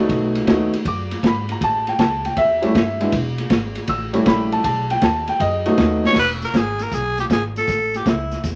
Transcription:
0.00 0.44 F#3 medium
0.00 0.44 A3 medium
0.00 0.45 B3 medium
0.00 0.45 D#4 medium
0.09 0.36 B1 medium
0.09 kick medium
0.09 snare soft
0.09 ride medium
0.35 snare soft
0.35 ride medium
0.47 0.74 D#2 medium
0.47 0.70 F#3 medium
0.47 0.70 A3 medium
0.47 0.70 B3 medium
0.47 0.71 D#4 medium
0.47 kick medium
0.47 snare loud
0.47 ride medium
0.73 snare soft
0.73 ride medium
0.85 1.12 F#2 medium
0.85 1.23 D6 loud
0.85 kick medium
0.85 ride medium
1.11 snare soft
1.11 ride medium
1.23 1.50 G#2 loud
1.23 1.49 B5 medium
1.23 kick medium
1.23 snare loud
1.23 ride medium
1.49 1.62 A#5 medium
1.49 snare soft
1.49 ride medium
1.61 1.88 A1 medium
1.61 1.87 A5 loud
1.61 kick medium
1.61 snare soft
1.61 ride medium
1.87 1.99 G5 medium
1.87 snare soft
1.87 ride medium
1.99 2.26 C#2 loud
1.99 2.24 A5 medium
1.99 kick medium
1.99 snare loud
1.99 ride medium
2.25 2.37 G5 medium
2.25 snare soft
2.25 ride medium
2.36 2.63 E2 medium
2.36 3.11 E5 loud
2.36 kick medium
2.36 snare soft
2.36 ride medium
2.62 2.73 G3 medium
2.62 2.73 A3 medium
2.62 2.73 C#4 medium
2.62 2.74 E4 medium
2.62 snare soft
2.62 ride medium
2.75 3.02 G2 medium
2.75 kick medium
2.75 snare loud
2.75 ride medium
3.00 3.11 G#3 medium
3.00 3.11 B3 medium
3.00 3.12 D4 medium
3.00 3.12 E4 medium
3.00 snare soft
3.00 ride medium
3.12 3.39 E1 loud
3.12 kick loud
3.12 snare soft
3.12 ride loud
3.38 snare soft
3.38 ride medium
3.50 3.77 G#1 loud
3.50 kick medium
3.50 snare loud
3.50 ride medium
3.75 snare soft
3.75 ride medium
3.87 4.15 A1 medium
3.87 4.25 E6 loud
3.87 kick medium
3.87 snare soft
3.87 ride medium
4.13 4.61 G3 medium
4.13 4.61 A3 medium
4.13 4.62 C#4 medium
4.13 4.62 E4 medium
4.13 snare soft
4.13 ride medium
4.26 4.53 A#1 loud
4.26 4.51 B5 loud
4.26 kick medium
4.26 snare loud
4.26 ride medium
4.52 4.63 A5 medium
4.52 snare soft
4.52 ride medium
4.64 4.91 B1 medium
4.64 4.89 A5 medium
4.64 kick medium
4.64 ride loud
4.90 5.02 G5 medium
4.90 snare soft
4.90 ride medium
5.02 5.29 D#2 loud
5.02 5.28 A5 medium
5.02 kick medium
5.02 snare loud
5.02 ride medium
5.27 5.40 G5 medium
5.27 snare soft
5.27 ride medium
5.40 5.67 F#2 loud
5.40 6.14 D#5 loud
5.40 kick medium
5.40 snare soft
5.40 ride medium
5.66 6.13 F#3 medium
5.66 6.13 A3 medium
5.66 6.14 B3 medium
5.66 6.14 D#4 medium
5.66 snare soft
5.66 ride medium
5.78 6.05 D#2 loud
5.78 kick medium
5.78 snare loud
5.78 ride medium
6.04 6.17 C#5 loud
6.04 snare medium
6.13 6.43 E1 medium
6.13 kick medium
6.13 snare loud
6.13 crash loud
6.17 6.30 B4 loud
6.17 snare soft
6.42 6.59 A#4 medium
6.42 snare soft
6.42 closed hi-hat medium
6.54 6.81 G#1 medium
6.54 6.84 G#4 medium
6.54 kick medium
6.54 snare loud
6.54 closed hi-hat medium
6.79 6.96 A#4 medium
6.79 snare soft
6.79 closed hi-hat medium
6.92 7.19 B1 medium
6.92 7.19 G#4 loud
6.92 kick medium
6.92 snare soft
6.92 closed hi-hat medium
7.18 7.25 G4 medium
7.18 snare soft
7.18 closed hi-hat medium
7.30 7.57 G#1 medium
7.30 7.43 G#4 medium
7.30 kick medium
7.30 snare loud
7.30 closed hi-hat medium
7.56 7.98 A4 medium
7.56 snare soft
7.56 closed hi-hat medium
7.68 7.95 A1 medium
7.68 kick medium
7.68 snare soft
7.68 closed hi-hat medium
7.94 8.10 G4 medium
7.94 snare soft
7.94 closed hi-hat medium
8.06 8.33 C#2 loud
8.06 8.45 E4 medium
8.06 kick medium
8.06 snare loud
8.06 closed hi-hat medium
8.31 snare soft
8.31 closed hi-hat medium
8.44 8.55 E2 medium
8.44 kick medium
8.44 snare soft
8.44 closed hi-hat medium

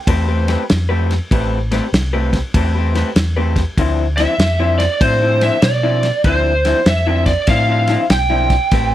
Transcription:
0.07 0.55 E2 medium
0.07 0.28 A3 medium
0.07 0.27 C4 medium
0.07 0.27 G4 medium
0.07 0.26 B4 medium
0.07 kick loud
0.07 ride medium
0.28 0.47 A3 medium
0.28 0.47 C4 medium
0.28 0.48 G4 medium
0.28 0.48 B4 medium
0.48 0.62 A3 medium
0.48 0.62 C4 medium
0.48 0.62 G4 medium
0.48 0.62 B4 medium
0.48 snare soft
0.48 ride medium
0.70 1.18 F2 medium
0.70 snare medium
0.70 ride medium
0.89 1.13 A3 medium
0.89 1.13 C4 medium
0.89 1.13 G4 medium
0.89 1.13 B4 medium
1.11 snare soft
1.11 ride soft
1.31 1.78 A1 medium
1.31 1.57 A3 medium
1.31 1.58 C4 medium
1.31 1.58 G4 medium
1.31 1.58 B4 medium
1.31 kick medium
1.31 ride medium
1.71 1.85 A3 medium
1.71 1.86 C4 medium
1.71 1.86 G4 medium
1.71 1.86 B4 medium
1.71 snare soft
1.71 ride medium
1.93 2.40 C2 medium
1.93 snare loud
1.93 ride medium
2.13 2.37 A3 medium
2.13 2.37 C4 medium
2.13 2.36 G4 medium
2.13 2.36 B4 medium
2.33 kick medium
2.33 snare soft
2.33 ride medium
2.54 3.02 E2 medium
2.54 2.75 A3 medium
2.54 2.75 C4 medium
2.54 2.74 G4 medium
2.54 2.74 B4 medium
2.54 kick loud
2.54 ride medium
2.75 2.94 A3 medium
2.75 2.94 C4 medium
2.75 2.94 G4 medium
2.75 2.95 B4 medium
2.95 3.09 A3 medium
2.95 3.09 C4 medium
2.95 3.09 G4 medium
2.95 3.09 B4 medium
2.95 snare soft
2.95 ride medium
3.16 3.63 E2 medium
3.16 snare loud
3.16 ride medium
3.37 3.61 A3 medium
3.37 3.60 C4 medium
3.37 3.60 G4 medium
3.37 3.60 B4 medium
3.56 kick medium
3.56 snare soft
3.56 ride soft
3.77 4.25 D2 medium
3.77 4.04 D3 medium
3.77 4.05 F3 medium
3.77 4.05 C4 medium
3.77 4.05 E4 medium
3.77 kick medium
3.77 ride medium
4.17 4.33 D3 medium
4.17 4.33 F3 medium
4.17 4.33 C4 medium
4.17 4.33 E4 medium
4.17 4.75 E5 medium
4.17 snare soft
4.17 ride medium
4.38 4.86 F2 medium
4.38 snare medium
4.38 ride medium
4.60 4.84 D3 medium
4.60 4.83 F3 medium
4.60 4.83 C4 medium
4.60 4.83 E4 medium
4.78 4.99 D5 medium
4.78 snare soft
4.78 ride medium
5.01 5.49 A2 medium
5.01 5.21 D3 medium
5.01 5.21 F3 medium
5.01 5.21 C4 medium
5.01 5.21 E4 medium
5.01 5.43 C5 medium
5.01 kick loud
5.01 ride medium
5.22 5.40 D3 medium
5.22 5.41 F3 medium
5.22 5.41 C4 medium
5.22 5.41 E4 medium
5.41 5.56 D3 medium
5.41 5.56 F3 medium
5.41 5.56 C4 medium
5.41 5.56 E4 medium
5.41 5.63 E5 medium
5.41 snare soft
5.41 ride medium
5.62 6.10 B2 medium
5.62 6.21 D5 medium
5.62 snare loud
5.62 ride medium
5.83 6.07 D3 medium
5.83 6.07 F3 medium
5.83 6.07 C4 medium
5.83 6.07 E4 medium
6.03 snare soft
6.03 ride soft
6.24 6.72 D2 medium
6.24 6.51 D3 medium
6.24 6.52 F3 medium
6.24 6.52 C4 medium
6.24 6.52 E4 medium
6.24 6.89 C5 medium
6.24 kick medium
6.24 ride medium
6.65 6.79 D3 medium
6.65 6.80 F3 medium
6.65 6.80 C4 medium
6.65 6.80 E4 medium
6.65 snare soft
6.65 ride medium
6.86 7.34 F2 medium
6.86 7.26 E5 medium
6.86 snare loud
6.86 ride medium
7.07 7.31 D3 medium
7.07 7.31 F3 medium
7.07 7.30 C4 medium
7.07 7.30 E4 medium
7.26 7.48 D5 medium
7.26 kick medium
7.26 snare soft
7.26 ride medium
7.47 7.96 A2 medium
7.47 7.68 D3 medium
7.47 7.68 F3 medium
7.47 7.67 C4 medium
7.47 7.67 E4 medium
7.47 8.06 F5 medium
7.47 kick loud
7.47 snare soft
7.47 ride medium
7.68 7.88 D3 medium
7.68 7.88 F3 medium
7.68 7.89 C4 medium
7.68 7.88 E4 medium
7.87 8.03 D3 medium
7.87 8.03 F3 medium
7.87 8.03 C4 medium
7.87 8.03 E4 medium
7.87 snare soft
7.87 ride medium
8.09 8.57 B1 medium
8.09 8.95 G5 medium
8.09 snare loud
8.09 ride medium
8.30 8.54 D3 medium
8.30 8.54 F3 medium
8.30 8.54 C4 medium
8.30 8.53 E4 medium
8.50 kick medium
8.50 snare soft
8.50 ride medium
8.71 8.95 A1 medium
8.71 8.95 A3 medium
8.71 8.95 C4 medium
8.71 8.95 G4 medium
8.71 8.95 B4 medium
8.71 kick medium
8.71 snare soft
8.71 ride medium

